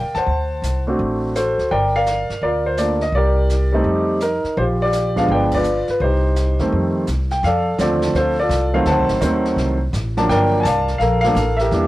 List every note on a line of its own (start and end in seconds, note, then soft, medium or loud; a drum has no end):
0.00 0.13 D2 medium
0.00 0.23 A#4 medium
0.00 0.24 D5 medium
0.00 0.15 G5 medium
0.15 0.25 D#2 medium
0.15 0.83 C5 medium
0.15 0.83 F#5 medium
0.15 0.82 A5 medium
0.15 snare soft
0.26 0.60 D2 medium
0.26 brush sweep soft
0.62 0.95 C2 medium
0.62 snare soft
0.62 hi-hat pedal medium
0.87 1.32 A3 medium
0.87 1.33 C4 medium
0.87 1.32 D4 medium
0.87 1.33 F#4 medium
0.99 1.54 A1 medium
0.99 brush sweep soft
1.35 1.68 F#4 soft
1.35 1.68 A4 medium
1.35 1.68 C5 medium
1.35 snare soft
1.35 hi-hat pedal soft
1.58 1.69 D2 medium
1.58 snare soft
1.71 2.26 G1 medium
1.71 1.95 A#4 medium
1.71 1.95 D5 medium
1.71 1.95 G5 medium
1.71 brush sweep soft
1.96 2.42 A#4 medium
1.96 2.41 D5 medium
1.96 2.44 F5 loud
2.06 snare soft
2.06 hi-hat pedal soft
2.29 muted upright bass stroke soft
2.29 snare soft
2.41 3.10 D2 medium
2.41 2.79 F4 medium
2.41 3.10 A#4 medium
2.41 2.66 D5 medium
2.41 brush sweep soft
2.66 2.79 C5 medium
2.77 2.99 A3 soft
2.77 2.99 A#3 soft
2.77 3.00 D4 soft
2.77 3.00 F4 medium
2.77 3.00 D5 medium
2.77 snare soft
2.77 hi-hat pedal soft
3.01 3.13 D#5 medium
3.01 snare soft
3.12 3.81 C2 medium
3.12 4.18 D5 medium
3.12 brush sweep soft
3.16 4.19 G4 medium
3.16 3.83 A#4 medium
3.49 snare medium
3.49 hi-hat pedal medium
3.72 4.18 G3 medium
3.72 4.19 A3 medium
3.72 4.19 C4 medium
3.72 4.19 D#4 medium
3.84 4.40 F2 medium
3.84 brush sweep soft
4.20 4.56 D#4 medium
4.20 4.55 A#4 medium
4.20 snare soft
4.20 hi-hat pedal soft
4.44 muted upright bass stroke soft
4.44 snare soft
4.56 5.25 A#1 medium
4.56 4.83 F4 medium
4.56 4.82 G4 medium
4.56 4.63 C5 medium
4.56 brush sweep soft
4.82 5.27 F4 medium
4.82 5.27 G4 medium
4.82 5.18 D5 medium
4.92 snare medium
4.92 hi-hat pedal medium
5.16 5.62 F3 medium
5.16 5.62 G#3 medium
5.16 5.63 B3 medium
5.16 5.63 D4 medium
5.16 5.30 F5 medium
5.16 kick soft
5.16 snare soft
5.28 5.84 G1 medium
5.28 5.54 G5 medium
5.28 brush sweep soft
5.34 5.55 B4 medium
5.34 5.53 D5 medium
5.51 5.87 D5 medium
5.51 kick medium
5.51 ride medium
5.57 6.00 F4 medium
5.57 5.89 B4 medium
5.64 hi-hat pedal medium
5.88 6.02 B4 medium
5.88 muted upright bass stroke soft
5.88 snare soft
6.00 6.55 C2 medium
6.00 6.70 D#4 soft
6.00 6.69 G4 medium
6.00 6.69 C5 medium
6.00 brush sweep soft
6.36 snare soft
6.36 hi-hat pedal medium
6.59 6.71 E2 medium
6.59 7.05 D#3 medium
6.59 7.06 G3 medium
6.59 7.06 A3 medium
6.59 7.07 C4 medium
6.59 snare soft
6.72 7.05 F2 medium
6.72 brush sweep soft
7.07 7.41 C2 medium
7.07 snare soft
7.07 hi-hat pedal soft
7.31 7.44 G5 medium
7.31 snare soft
7.43 7.78 F2 medium
7.43 7.81 A4 medium
7.43 7.79 D5 medium
7.43 7.81 F5 medium
7.43 brush sweep soft
7.43 snare soft
7.78 8.13 D#2 medium
7.78 8.33 D3 medium
7.78 8.33 F3 medium
7.78 8.34 A3 medium
7.78 8.34 C4 medium
7.78 8.17 D5 medium
7.78 snare medium
7.78 hi-hat pedal medium
7.82 8.17 F4 medium
7.82 8.17 A4 medium
8.02 snare medium
8.13 8.49 D2 medium
8.13 8.37 C5 medium
8.13 brush sweep soft
8.13 snare soft
8.18 8.40 F4 medium
8.18 8.40 A4 medium
8.39 8.85 F4 medium
8.39 8.85 A4 medium
8.39 8.76 D5 medium
8.49 8.85 C2 medium
8.49 snare medium
8.49 hi-hat pedal soft
8.73 9.19 D#3 medium
8.73 9.19 F#3 medium
8.73 9.20 A3 medium
8.73 9.20 C4 medium
8.73 8.79 F5 medium
8.86 8.98 D2 medium
8.86 9.55 C5 medium
8.86 9.55 F#5 medium
8.86 9.20 A5 medium
8.86 brush sweep soft
8.86 snare soft
8.98 9.08 C2 medium
9.09 9.20 A1 medium
9.09 snare soft
9.21 9.55 D#2 medium
9.21 9.76 D#3 medium
9.21 9.76 F#3 medium
9.21 9.76 A3 medium
9.21 9.77 C4 medium
9.21 snare medium
9.21 hi-hat pedal medium
9.45 snare soft
9.56 9.91 C2 medium
9.56 brush sweep soft
9.56 snare soft
9.93 10.28 A1 medium
9.93 snare medium
9.93 hi-hat pedal soft
10.17 10.62 F3 medium
10.17 10.63 F#3 medium
10.17 10.63 A#3 medium
10.17 10.63 D4 medium
10.17 10.23 A5 medium
10.17 snare soft
10.29 10.64 G1 medium
10.29 10.97 A#4 medium
10.29 10.65 D5 medium
10.29 10.58 G5 loud
10.29 brush sweep soft
10.29 snare soft
10.60 10.65 G#5 medium
10.60 11.01 A5 medium
10.65 10.99 C2 medium
10.65 11.33 D5 medium
10.65 10.97 F5 medium
10.65 snare medium
10.65 hi-hat pedal medium
10.88 snare soft
10.98 11.34 A#1 medium
10.98 11.24 A4 medium
10.98 11.23 A#4 medium
10.98 11.19 F5 medium
10.98 brush sweep medium
10.98 snare soft
11.21 11.35 F3 medium
11.21 11.59 A#4 medium
11.21 11.55 F5 loud
11.21 snare soft
11.25 11.36 A3 medium
11.25 11.36 A#3 medium
11.25 11.36 D4 medium
11.25 11.69 A4 medium
11.35 11.70 A1 medium
11.35 snare medium
11.35 hi-hat pedal soft
11.57 11.87 E5 medium
11.57 snare soft
11.61 11.87 G4 medium
11.61 11.87 A#4 medium
11.71 11.87 E2 medium
11.71 11.87 E3 medium
11.71 11.87 G3 medium
11.71 11.87 A#3 medium
11.71 11.87 D4 medium
11.71 brush sweep soft
11.71 snare soft